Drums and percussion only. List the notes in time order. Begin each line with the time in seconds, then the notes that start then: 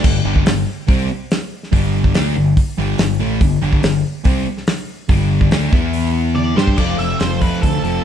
0.04 kick, crash
0.36 kick
0.46 snare, open hi-hat
0.88 kick, open hi-hat
1.31 snare, open hi-hat
1.63 snare
1.73 kick, open hi-hat
2.04 kick
2.14 snare, open hi-hat
2.57 kick, open hi-hat
2.98 snare, open hi-hat
3.41 kick, open hi-hat
3.73 kick
3.83 snare, open hi-hat
4.24 kick, open hi-hat
4.57 snare
4.67 snare, open hi-hat
5.09 kick, open hi-hat
5.41 kick
5.51 snare, open hi-hat
5.73 kick
5.93 open hi-hat
6.36 high tom
6.58 snare
6.67 kick
6.78 kick, crash
6.99 open hi-hat
7.20 snare, open hi-hat
7.41 kick, open hi-hat
7.63 kick, open hi-hat
7.85 open hi-hat